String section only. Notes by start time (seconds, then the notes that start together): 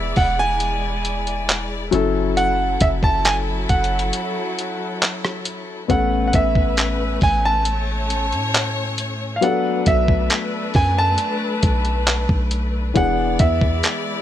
Already playing: G#3 E4 D5
1.93 F#3 E4 A4
5.90 A3 C#4 B4
7.66 C#5
9.42 A3 D4 B4
12.95 G#3 E4 D5